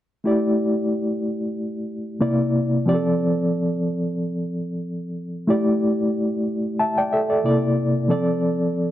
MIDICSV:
0, 0, Header, 1, 2, 480
1, 0, Start_track
1, 0, Tempo, 653595
1, 190, Time_signature, 4, 2, 24, 8
1, 6546, End_track
2, 0, Start_track
2, 0, Title_t, "Reed electric piano"
2, 0, Program_c, 0, 4
2, 176, Note_on_c, 0, 57, 56
2, 185, Note_on_c, 0, 64, 60
2, 189, Note_on_c, 0, 67, 54
2, 199, Note_on_c, 0, 74, 62
2, 337, Control_c, 0, 64, 127
2, 1594, Note_off_c, 0, 57, 0
2, 1599, Note_off_c, 0, 64, 0
2, 1600, Note_off_c, 0, 67, 0
2, 1606, Note_off_c, 0, 74, 0
2, 1619, Note_on_c, 0, 58, 58
2, 1622, Note_on_c, 0, 48, 59
2, 1627, Note_on_c, 0, 64, 57
2, 1629, Note_on_c, 0, 74, 65
2, 1640, Control_c, 0, 64, 0
2, 1766, Control_c, 0, 64, 127
2, 2098, Note_on_c, 0, 53, 70
2, 2104, Note_off_c, 0, 58, 0
2, 2106, Note_off_c, 0, 48, 0
2, 2106, Note_on_c, 0, 60, 59
2, 2108, Note_off_c, 0, 64, 0
2, 2109, Note_off_c, 0, 74, 0
2, 2112, Note_on_c, 0, 67, 42
2, 2119, Control_c, 0, 64, 0
2, 2122, Note_on_c, 0, 74, 73
2, 2162, Note_off_c, 0, 67, 0
2, 2163, Note_on_c, 0, 69, 56
2, 2258, Control_c, 0, 64, 127
2, 3994, Note_off_c, 0, 53, 0
2, 3998, Note_off_c, 0, 60, 0
2, 4006, Note_off_c, 0, 74, 0
2, 4020, Note_on_c, 0, 57, 66
2, 4027, Note_off_c, 0, 69, 0
2, 4029, Note_on_c, 0, 64, 55
2, 4037, Note_on_c, 0, 67, 58
2, 4039, Control_c, 0, 64, 0
2, 4042, Note_on_c, 0, 74, 67
2, 4149, Control_c, 0, 64, 127
2, 4977, Note_off_c, 0, 74, 0
2, 4990, Note_on_c, 0, 81, 54
2, 4996, Note_on_c, 0, 76, 40
2, 5113, Note_off_c, 0, 81, 0
2, 5116, Note_off_c, 0, 76, 0
2, 5124, Note_on_c, 0, 79, 54
2, 5128, Note_on_c, 0, 74, 54
2, 5226, Note_off_c, 0, 79, 0
2, 5228, Note_off_c, 0, 74, 0
2, 5233, Note_on_c, 0, 76, 59
2, 5239, Note_on_c, 0, 69, 54
2, 5351, Note_off_c, 0, 69, 0
2, 5355, Note_off_c, 0, 76, 0
2, 5358, Note_on_c, 0, 74, 49
2, 5360, Note_on_c, 0, 69, 41
2, 5436, Note_off_c, 0, 57, 0
2, 5440, Note_off_c, 0, 64, 0
2, 5445, Note_off_c, 0, 67, 0
2, 5463, Note_on_c, 0, 48, 62
2, 5468, Note_off_c, 0, 74, 0
2, 5470, Note_on_c, 0, 58, 51
2, 5471, Note_on_c, 0, 64, 48
2, 5477, Note_on_c, 0, 74, 71
2, 5479, Control_c, 0, 64, 0
2, 5587, Note_off_c, 0, 69, 0
2, 5613, Control_c, 0, 64, 127
2, 5936, Note_on_c, 0, 53, 54
2, 5943, Note_on_c, 0, 60, 51
2, 5946, Note_off_c, 0, 48, 0
2, 5948, Note_on_c, 0, 69, 54
2, 5949, Note_off_c, 0, 74, 0
2, 5950, Note_off_c, 0, 58, 0
2, 5950, Note_off_c, 0, 64, 0
2, 5958, Control_c, 0, 64, 0
2, 5958, Note_on_c, 0, 74, 66
2, 6093, Control_c, 0, 64, 127
2, 6546, Note_off_c, 0, 53, 0
2, 6546, Note_off_c, 0, 60, 0
2, 6546, Note_off_c, 0, 69, 0
2, 6546, Note_off_c, 0, 74, 0
2, 6546, End_track
0, 0, End_of_file